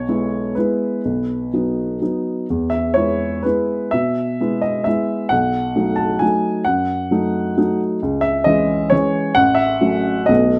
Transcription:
Already playing: B1 C#5
0.08 G#3 B3 E4
0.55 G#3 B3 E4 B4
1.05 B1
1.53 F#3 B3 D#4
2.01 F#3 B3 D#4
2.50 E2
2.70 E5
2.94 G#3 B3 E4 C#5
3.43 G#3 B3 E4 B4
3.91 B2 E5
4.41 G#3 B3 E4
4.62 D#5
4.84 G#3 B3 E4 E5
5.29 B1 F#5
5.76 F#3 A3 D#4
5.96 A5
6.19 F#3 A3 D#4 G#5
6.65 F#2 F#5
7.11 F#3 A3 D#4
7.57 F#3 A3 D#4
8.03 C#2
8.21 E5
8.44 E3 G#3 C#4 D#5
8.90 E3 G#3 C#4 C#5
9.35 A1 F#5
9.55 E5
9.81 F#3 A3 C#4
10.26 B1 F#3 A3 D#5
10.30 B3

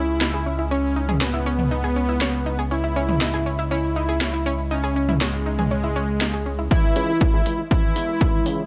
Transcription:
Already playing: C#2 C#3 G#3 E4
0.21 D#4, snare
0.34 G#4
0.46 C#4
0.59 E4
0.71 C#4
0.96 D#4
1.09 G#4, mid tom
1.21 B3 C#4, snare
1.34 E4
1.46 C#4
1.59 mid tom
1.71 D#4
1.84 G#4
1.96 C#4
2.09 E4
2.21 C#4, snare
2.46 D#4
2.59 G#4
2.71 C#4 E4
2.84 E4
2.96 C#4
3.09 mid tom
3.21 D#4, snare
3.34 G#4
3.46 C#4
3.59 E4
3.71 C#4 E4
3.96 D#4
4.09 G#4
4.21 C#4, snare
4.34 E4
4.46 C#4
4.71 C#4 D#4
4.84 G#4
4.96 C#4
5.09 E4, mid tom
5.21 G#3 C#4, snare
5.46 D#4
5.59 G#4, mid tom
5.71 C#4
5.84 E4
5.96 C#4
6.21 D#4, snare
6.34 G#4
6.46 C#4
6.59 E4
6.71 C#3 E3 G#3 C#4 E4, kick
6.84 E4
6.96 C#2 C#4, open hi-hat
7.21 D#4, kick
7.34 C#2 G#4
7.46 C#2 C#4, open hi-hat
7.59 E4
7.71 E3 C#4 E4, kick
7.96 E2 D#4, open hi-hat
8.09 G#4
8.21 C#4, kick
8.34 E4
8.46 C#2 C#4, open hi-hat

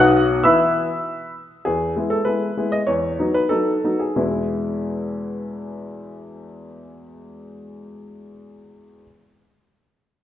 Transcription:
Already playing: B1 B2 F#3 B3 D#4 F#6
0.00 F#5
0.44 E3 B3 E4 E5 B5 E6
1.65 E2 G#4
1.96 G#3 B3 E4
2.10 A4
2.25 G#3 B3 E4 B4
2.57 G#3 B3 E4
2.72 D#5
2.87 E2 C#5
3.19 F#3 B3 D#4
3.34 B4
3.49 F#3 B3 D#4 A4
3.84 F#3 B3 D#4
4.00 G#4
4.16 E2 B2 G#3 B3 E4

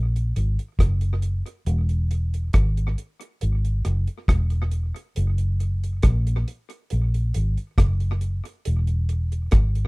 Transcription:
Already playing: A#1
0.16 closed hi-hat
0.36 G#1, closed hi-hat
0.59 closed hi-hat
0.79 F#1, kick, cross-stick, closed hi-hat
1.01 closed hi-hat
1.22 closed hi-hat
1.46 closed hi-hat
1.66 E1, closed hi-hat
1.89 closed hi-hat
2.11 closed hi-hat
2.34 closed hi-hat
2.53 G#1, kick, cross-stick, closed hi-hat
2.77 closed hi-hat
2.98 closed hi-hat
3.21 closed hi-hat
3.41 G#1, closed hi-hat
3.65 closed hi-hat
3.85 F#1, cross-stick, closed hi-hat
4.07 closed hi-hat
4.28 E1, kick, cross-stick, closed hi-hat
4.50 closed hi-hat
4.71 closed hi-hat
4.96 closed hi-hat
5.16 F#1, closed hi-hat
5.38 closed hi-hat
5.60 closed hi-hat
5.84 closed hi-hat
6.02 A#1, kick, cross-stick, closed hi-hat
6.27 closed hi-hat
6.48 closed hi-hat
6.70 closed hi-hat
6.90 A#1, closed hi-hat
7.14 closed hi-hat
7.34 G#1, closed hi-hat
7.57 closed hi-hat
7.78 F#1, kick, cross-stick, closed hi-hat
8.00 closed hi-hat
8.21 closed hi-hat
8.45 closed hi-hat
8.65 E1, closed hi-hat
8.87 closed hi-hat
9.09 closed hi-hat
9.32 closed hi-hat
9.51 G#1, kick, cross-stick, closed hi-hat
9.75 closed hi-hat

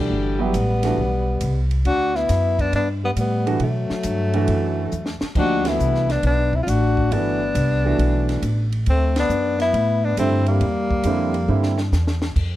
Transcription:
Already playing: D3 E3 G3 A3 D4 F#4
0.10 G1
0.39 F#3 G3 B3 E4 G4
0.53 A1, hi-hat pedal, ride
0.83 E3 A3 D4 F#4, snare, ride
0.97 B1
1.41 C2, hi-hat pedal, ride
1.71 ride
1.85 D2 D4 F#4, ride
2.15 B3 E4, snare
2.29 F#2, snare, hi-hat pedal, ride
2.59 B3 D4, kick, ride
2.73 G2 B3 D4, ride
3.03 G3 B3
3.16 A2 G3 B3, hi-hat pedal, ride
3.46 E3 A3 D4 F#4, ride
3.60 B2 F#3 A3, ride
3.90 muted upright bass stroke, snare
4.03 G2, hi-hat pedal, ride
4.33 E3 A3 D4 F#4, ride
4.48 F#2, ride
4.92 E2, hi-hat pedal
5.06 snare
5.21 muted upright bass stroke, snare
5.35 D2 F3 A#3 D4 D#4 F#4 G4, kick, crash
5.65 E3 A3 B3 D4 E4 F#4, snare, ride
5.79 C2, hi-hat pedal
5.95 snare
6.09 B3 D4, snare, ride
6.23 B1 B3 D4, ride
6.53 C4 E4, kick
6.62 C4 F4
6.67 A1 D4 F#4, hi-hat pedal, ride
6.97 kick
7.11 G1 E3 A3 B3 D4 F#4, ride
7.55 C2, hi-hat pedal, ride
7.85 E3 A3 D4 F#4
7.98 B1, ride
8.29 snare, ride
8.42 A1, hi-hat pedal, ride
8.72 ride
8.86 D2 A3 C4, ride
9.16 B3 D4, snare, ride
9.29 F#2, hi-hat pedal
9.59 B3 E4, snare, ride
9.73 A2, ride
10.04 B3 D4
10.17 G2 D3 G3 A3 C4 E4, hi-hat pedal, ride
10.46 G3 A#3, ride
10.60 E2, ride
10.91 kick
11.03 F2 D3 G3 C4 E4, hi-hat pedal, ride
11.34 ride
11.48 G2 D3 G3 C4 E4
11.63 snare
11.78 snare
11.92 E2, snare, hi-hat pedal
12.07 snare
12.22 snare
12.36 F2, kick, crash

